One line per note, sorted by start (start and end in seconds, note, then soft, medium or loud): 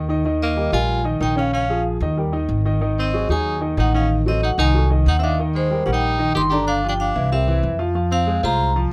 0.00 0.67 D#2 medium
0.09 0.22 D#3 medium
0.09 0.22 D#4 medium
0.09 0.23 D#5 medium
0.25 0.51 D#3 medium
0.25 0.52 D#4 medium
0.25 0.52 D#5 medium
0.42 0.72 A#3 medium
0.42 0.75 D#5 medium
0.57 0.70 G3 medium
0.57 0.70 G4 medium
0.57 0.70 A#4 medium
0.72 1.18 A#1 medium
0.72 0.99 G3 medium
0.72 0.99 F4 medium
0.72 1.03 F4 loud
0.72 0.99 A#4 medium
0.72 1.04 G#5 loud
1.04 1.18 D#3 medium
1.04 1.18 D#4 medium
1.04 1.18 D#5 medium
1.20 1.96 A#1 medium
1.20 1.34 D#3 medium
1.20 1.34 D#4 medium
1.20 1.36 D#4 medium
1.20 1.34 D#5 medium
1.20 1.37 G5 medium
1.36 1.63 C#3 medium
1.36 1.63 C#4 medium
1.36 1.53 C#4 medium
1.36 1.64 C#5 medium
1.36 1.53 F5 medium
1.53 1.83 C#4 medium
1.53 1.84 F5 medium
1.69 1.96 F3 medium
1.69 1.96 F4 medium
1.69 1.96 G#4 medium
2.01 2.46 D#2 medium
2.01 2.15 D#3 medium
2.01 2.15 D#4 medium
2.01 2.15 D#5 medium
2.17 2.31 G3 medium
2.17 2.31 G4 medium
2.17 2.31 A#4 medium
2.32 2.59 D#3 medium
2.32 2.60 D#4 medium
2.32 2.60 D#5 medium
2.49 3.24 G#1 medium
2.65 2.79 D#3 medium
2.65 2.79 D#4 medium
2.65 2.79 D#5 medium
2.81 3.08 D#3 medium
2.81 3.08 D#4 medium
2.81 3.08 D#5 medium
2.99 3.29 C4 medium
2.99 3.29 D#5 medium
3.14 3.27 F#3 medium
3.14 3.27 F#4 medium
3.14 3.27 G#4 medium
3.29 3.74 D#2 medium
3.29 3.56 F#3 medium
3.29 3.60 D#4 medium
3.29 3.56 F#4 medium
3.29 3.57 G#4 medium
3.29 3.61 G#5 medium
3.61 3.75 D#3 medium
3.61 3.75 D#4 medium
3.61 3.75 D#5 medium
3.77 4.53 A1 medium
3.77 3.91 D#3 medium
3.77 3.91 D#4 medium
3.77 3.94 D#4 medium
3.77 3.91 D#5 medium
3.77 3.96 F#5 medium
3.94 4.21 D#3 medium
3.94 4.10 C#4 medium
3.94 4.21 D#4 medium
3.94 4.21 D#5 medium
3.94 4.11 F5 medium
4.26 4.53 F#3 medium
4.26 4.42 C4 medium
4.26 4.53 F#4 medium
4.26 4.53 A4 medium
4.26 4.42 D#5 medium
4.43 4.50 D#4 medium
4.43 4.52 F#5 loud
4.58 5.03 C2 medium
4.58 4.72 D#3 medium
4.58 4.72 D#4 medium
4.58 4.89 D#4 medium
4.58 4.72 D#5 medium
4.58 4.89 G#5 loud
4.75 4.88 F#3 medium
4.75 4.88 F#4 medium
4.75 4.88 A4 medium
4.90 5.17 D#3 medium
4.90 5.17 D#4 medium
4.90 5.17 D#5 medium
5.06 5.81 D#2 medium
5.06 5.18 D#4 medium
5.06 5.20 F#5 medium
5.19 5.23 C4 medium
5.19 5.23 E5 medium
5.23 5.36 D#3 medium
5.23 5.38 D4 medium
5.23 5.36 D#4 medium
5.23 5.36 D#5 medium
5.23 5.38 F5 medium
5.39 5.66 D#3 medium
5.39 5.65 D#4 medium
5.39 5.66 D#5 medium
5.55 5.83 G#3 medium
5.55 5.84 C5 medium
5.71 5.84 G3 medium
5.71 5.84 G4 medium
5.71 5.84 A#4 medium
5.86 6.32 A#1 medium
5.86 6.13 G3 medium
5.86 5.92 C#4 medium
5.86 6.13 G4 medium
5.86 6.13 A#4 medium
5.86 5.93 F#5 medium
5.93 6.32 D#4 medium
5.93 6.37 G5 loud
6.19 6.32 D#3 medium
6.19 6.32 D#4 medium
6.19 6.32 D#5 medium
6.35 7.10 G1 medium
6.35 6.49 D#3 medium
6.35 6.49 D#4 medium
6.35 6.42 G4 medium
6.35 6.49 D#5 medium
6.35 6.44 C6 loud
6.50 6.78 D3 medium
6.50 6.78 D4 loud
6.50 6.65 G4 medium
6.50 6.78 D5 medium
6.50 6.68 A#5 medium
6.67 6.87 D4 medium
6.67 6.87 F5 loud
6.84 7.10 F3 medium
6.84 7.10 F4 medium
6.84 7.10 G4 medium
6.89 6.94 D4 medium
6.89 6.93 G5 medium
7.00 7.30 D4 medium
7.00 7.33 F5 medium
7.15 7.60 C2 medium
7.15 7.29 E3 medium
7.15 7.29 E4 medium
7.15 7.29 E5 medium
7.32 7.45 G3 medium
7.32 7.77 C4 medium
7.32 7.45 G4 medium
7.32 7.45 A#4 medium
7.32 7.77 E5 medium
7.47 7.74 E3 medium
7.47 7.74 E4 medium
7.47 7.74 E5 medium
7.63 8.38 F2 medium
7.79 7.92 F3 medium
7.79 7.92 F4 medium
7.79 7.92 F5 medium
7.95 8.21 F3 medium
7.95 8.22 F4 medium
7.95 8.22 F5 medium
8.12 8.41 C4 medium
8.12 8.45 F5 loud
8.27 8.40 G#3 medium
8.27 8.40 G#4 medium
8.27 8.41 C5 medium
8.43 8.88 C2 medium
8.43 8.70 G#3 medium
8.43 8.73 F4 loud
8.43 8.70 G#4 medium
8.43 8.70 C5 medium
8.43 8.74 A#5 loud
8.76 8.89 F3 medium
8.76 8.89 F4 medium
8.76 8.89 F5 medium